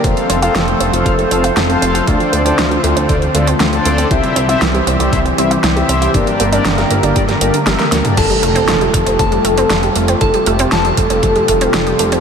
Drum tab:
CC |----------------|----------------|----------------|----------------|
HH |xxxxxxxxxxxxxxxx|xxxxxxxxxxxxxxxx|xxxxxxxxxxxxxxxx|xxxxxxxxxxxxxxxx|
SD |----o-------o---|----o-------o---|----o-------o---|----oo---o--ooo-|
T1 |----------------|----------------|----------------|------------o---|
T2 |----------------|----------------|----------------|---------------o|
BD |o-------o-------|o-------o-------|o-------o-------|o-------o-------|

CC |x---------------|----------------|
HH |xxxxxxxxxxxxxxxx|xxxxxxxxxxxxxxxx|
SD |----o-------o---|----o-------o---|
T1 |----------------|----------------|
T2 |----------------|----------------|
BD |o-----o-o-------|o-----o-o-o-----|